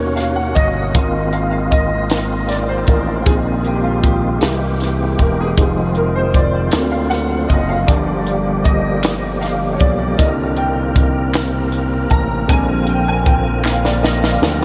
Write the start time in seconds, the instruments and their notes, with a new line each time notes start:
Already playing: slap bass D#2, tonewheel organ B2 A#3 C#4 F#4, grand piano A#3 C#4 D#4 A#4 C#5
0.16 grand piano F5, snare, closed hi-hat
0.36 grand piano F#5
0.55 slap bass G1, grand piano D#5, kick, closed hi-hat
0.93 slap bass G#1, tonewheel organ D#3 G#3 C4 F4, grand piano A#3 C4 F4, kick, closed hi-hat
1.33 grand piano F5, closed hi-hat
1.51 grand piano F5
1.71 grand piano D#5, kick, closed hi-hat
2.10 snare, closed hi-hat
2.49 grand piano D5, snare, closed hi-hat
2.69 grand piano C5
2.87 slap bass A1, grand piano A#4, kick, closed hi-hat
3.25 slap bass A#1, tonewheel organ D#3, grand piano G#3 C4 D#4 G#4, kick, closed hi-hat
3.64 grand piano G4, closed hi-hat
3.83 grand piano F4
4.04 grand piano G4, kick, closed hi-hat
4.40 slap bass C2, tonewheel organ E3 C4 G4, grand piano G#3 A#3 E4, snare, closed hi-hat
4.80 snare, closed hi-hat
5.18 slap bass E1, grand piano A#4, kick, closed hi-hat
5.41 grand piano G#4
5.56 slap bass F1, tonewheel organ D#3 F3 F4, grand piano G#3 D#4 G4, kick, closed hi-hat
5.95 grand piano A#4, closed hi-hat
6.15 grand piano C5
6.34 grand piano D5, kick, closed hi-hat
6.71 slap bass D2, tonewheel organ D3 F#3 A#3 F4, grand piano F#3 A#3 C4, snare, clap, closed hi-hat
6.91 grand piano F5
7.10 grand piano F#5, snare, closed hi-hat
7.30 grand piano F5
7.49 slap bass F#1, grand piano D#5, kick, closed hi-hat
7.69 grand piano F5
7.87 slap bass G1, grand piano D3 F3 A#3 D5, tonewheel organ D3 F3 G3 G4, kick, closed hi-hat
8.27 closed hi-hat
8.64 grand piano D#5, kick, closed hi-hat
9.03 snare, clap, closed hi-hat
9.41 grand piano F5, snare, closed hi-hat
9.73 grand piano C#5
9.79 slap bass B1, grand piano D5, kick, closed hi-hat
10.17 slap bass C2, tonewheel organ C3 C4 A#4, grand piano D3 D#3 A#3 D#5, kick, closed hi-hat
10.57 grand piano G5, closed hi-hat
10.96 kick, closed hi-hat
11.34 snare, clap, closed hi-hat
11.72 closed hi-hat
12.10 slap bass A1, grand piano A#5, kick, closed hi-hat
12.47 slap bass A#1, tonewheel organ D3 F3, grand piano G3 G#3 C4 D4 G#5, kick, closed hi-hat
12.87 grand piano G5, closed hi-hat
13.08 grand piano G#5
13.26 grand piano G5, kick, closed hi-hat
13.64 grand piano F5, snare, clap
13.85 grand piano D5, snare
14.03 grand piano D#5, snare
14.23 grand piano F5, snare
14.42 slap bass D2, snare